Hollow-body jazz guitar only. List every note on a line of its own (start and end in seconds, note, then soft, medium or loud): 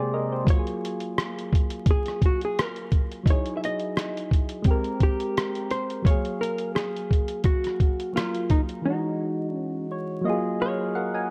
0.50 1.92 C#5 medium
1.91 2.24 G#4 medium
2.26 2.43 F#4 medium
2.45 2.61 G#4 medium
2.61 3.29 A#4 medium
3.30 3.56 C#5 medium
3.57 3.62 E5 medium
3.65 4.29 D#5 loud
5.03 5.74 G4 medium
5.71 6.06 C5 loud
6.06 6.42 C#5 loud
6.41 6.73 A#4 medium
6.75 7.45 G#4 medium
7.45 8.16 F#4 medium
8.16 8.51 F4 medium
8.51 8.60 D#4 medium
8.85 9.55 D#4 medium
9.55 9.86 C#4 medium
10.62 11.30 C#5 loud